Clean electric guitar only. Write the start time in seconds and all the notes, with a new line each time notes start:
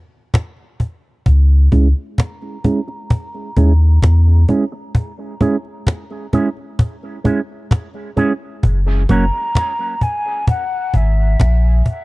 1.72 G#3 C#4 E4 G#4
2.64 G#3 C#4 E4 G#4
2.88 muted clean electric guitar stroke
3.57 G#3 C#4 E4 G#4
4.49 G#3 C#4 E4 G#4
4.72 muted clean electric guitar stroke
5.41 G#3 C#4 E4 G#4
6.33 G#3 C#4 E4 G#4
7.24 G#3 C#4 E4 G#4
8.17 G#3 C#4 E4 G#4
9.09 F#3 A#3 C#4 F#4